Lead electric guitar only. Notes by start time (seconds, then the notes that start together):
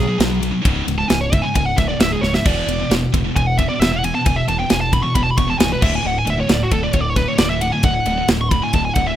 Already playing: G#4
0.98 A5
1.08 G#5
1.21 C#5
1.34 E5
1.42 G#5
1.56 G#5
1.66 F#5
1.77 E5
1.88 D5
2.00 E5
2.12 G#4
2.21 C#5
2.35 E5
2.46 D5
3.36 G#5
3.47 F#5
3.58 E5
3.69 D5
3.80 E5
3.92 F#5
4.05 G#5
4.15 A5
4.26 G#5
4.36 E5
4.49 A5
4.59 G5
4.71 G#5
4.81 A5
4.93 B5
5.03 C#6
5.15 B5
5.23 A5
5.31 B5
5.38 C#6
5.50 A5
5.59 G#5
5.73 B4
5.83 E5
5.95 G#5
6.07 F#5
6.19 G#5
6.30 E5
6.40 C#5
6.52 D5
6.63 F#4
6.72 A4
6.83 D5
6.93 C#5
7.01 D5
7.10 C#5
7.16 B4
7.28 C#5
7.38 D5
7.50 E5
7.61 F#5
7.72 G#5
7.84 F#5
8.41 C#6
8.51 B5
8.63 G#5
8.75 A5
8.85 G#5
8.95 F#5
9.07 E5